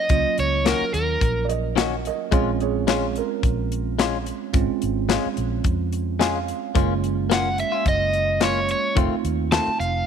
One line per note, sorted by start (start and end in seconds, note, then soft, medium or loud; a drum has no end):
0.00 0.36 D#5 medium
0.09 0.22 C#2 medium
0.09 2.28 F#3 medium
0.09 2.28 A#3 medium
0.09 2.28 C#4 medium
0.09 2.28 F4 medium
0.09 kick medium
0.09 closed hi-hat medium
0.38 0.72 C#2 medium
0.38 0.65 C#5 medium
0.38 closed hi-hat medium
0.65 0.83 D#3 medium
0.65 0.84 A#3 medium
0.65 0.84 C#4 medium
0.65 0.84 F#4 medium
0.65 0.93 A#4 medium
0.65 snare loud
0.65 closed hi-hat medium
0.81 muted fingered electric bass stroke soft
0.94 1.15 D#2 medium
0.94 1.46 A#4 medium
0.94 closed hi-hat medium
1.21 2.08 A#1 medium
1.21 kick medium
1.21 closed hi-hat medium
1.45 1.75 A#4 medium
1.45 1.48 D5 medium
1.49 1.76 D#5 medium
1.49 closed hi-hat medium
1.76 1.94 D#3 medium
1.76 1.94 A#3 medium
1.76 1.95 C#4 medium
1.76 1.95 F#4 medium
1.76 2.03 A#4 medium
1.76 2.05 D#5 medium
1.76 snare loud
1.76 closed hi-hat medium
2.05 2.31 A#4 medium
2.05 2.33 D#5 medium
2.05 closed hi-hat medium
2.32 3.19 A#1 medium
2.32 2.50 G#3 medium
2.32 4.50 G#3 medium
2.32 4.50 C4 medium
2.32 4.50 C#4 medium
2.32 2.50 C#4 medium
2.32 4.50 F4 medium
2.32 2.50 F4 medium
2.32 2.58 G#4 medium
2.32 2.60 C#5 medium
2.32 kick loud
2.32 closed hi-hat medium
2.60 2.86 G#4 medium
2.60 2.87 C#5 medium
2.60 closed hi-hat soft
2.87 3.05 G#3 medium
2.87 3.06 C#4 loud
2.87 3.06 F4 medium
2.87 3.14 G#4 medium
2.87 3.15 C#5 medium
2.87 snare loud
2.87 closed hi-hat medium
3.16 4.24 A#4 medium
3.16 closed hi-hat medium
3.43 4.30 A#1 medium
3.43 kick medium
3.43 closed hi-hat medium
3.72 closed hi-hat medium
3.99 4.16 G#3 medium
3.99 4.17 C#4 medium
3.99 4.17 F4 medium
3.99 snare loud
3.99 closed hi-hat medium
4.26 closed hi-hat medium
4.53 4.66 G#1 medium
4.53 6.71 G#3 medium
4.53 6.71 C4 medium
4.53 6.71 C#4 medium
4.53 6.71 F4 medium
4.53 kick loud
4.53 closed hi-hat medium
4.82 5.16 G#1 medium
4.82 closed hi-hat medium
5.09 5.27 G#3 medium
5.09 5.27 C#4 medium
5.09 5.28 F4 medium
5.09 snare loud
5.09 closed hi-hat medium
5.26 muted fingered electric bass stroke soft
5.37 5.59 A#1 medium
5.37 closed hi-hat medium
5.64 6.51 F2 medium
5.64 kick medium
5.64 closed hi-hat medium
5.92 closed hi-hat medium
6.19 6.37 G#3 medium
6.19 6.38 C#4 medium
6.19 6.38 F4 medium
6.19 6.34 G#5 medium
6.19 snare loud
6.19 closed hi-hat medium
6.36 6.73 F5 medium
6.48 closed hi-hat medium
6.75 7.62 F#1 medium
6.75 8.38 G#3 medium
6.75 6.93 A#3 medium
6.75 8.38 A#3 medium
6.75 8.38 C#4 medium
6.75 6.93 C#4 medium
6.75 8.38 F4 medium
6.75 6.93 F4 medium
6.75 kick loud
6.75 closed hi-hat medium
7.04 closed hi-hat medium
7.30 7.48 A#3 medium
7.30 7.49 C#4 medium
7.30 7.49 F4 medium
7.30 7.60 F#5 medium
7.30 snare loud
7.30 closed hi-hat medium
7.58 7.88 E5 medium
7.58 closed hi-hat medium
7.72 7.90 C#4 soft
7.72 7.88 F4 soft
7.86 8.73 F#1 medium
7.86 8.44 D#5 medium
7.86 kick medium
7.86 closed hi-hat medium
8.13 closed hi-hat medium
8.41 8.97 G#3 soft
8.41 8.59 A#3 medium
8.41 8.97 A#3 soft
8.41 8.97 C#4 soft
8.41 8.59 C#4 medium
8.41 8.96 F4 medium
8.41 8.60 F4 medium
8.41 8.69 C#5 medium
8.41 snare loud
8.41 closed hi-hat medium
8.69 8.96 C#5 medium
8.69 closed hi-hat medium
8.96 9.08 F1 medium
8.96 9.14 D#3 medium
8.96 9.14 A3 medium
8.96 10.07 A3 medium
8.96 10.07 C4 soft
8.96 9.15 C4 medium
8.96 10.07 D#4 medium
8.96 10.07 F4 medium
8.96 9.15 F4 medium
8.96 kick loud
8.96 closed hi-hat medium
9.12 muted fingered electric bass stroke soft
9.24 9.58 D#2 medium
9.24 closed hi-hat medium
9.52 9.70 D#3 medium
9.52 9.70 A3 medium
9.52 9.70 C4 medium
9.52 9.71 F4 medium
9.52 9.80 A5 medium
9.52 snare loud
9.52 closed hi-hat medium
9.67 muted fingered electric bass stroke soft
9.80 10.01 F1 medium
9.80 10.07 F5 medium
9.80 closed hi-hat medium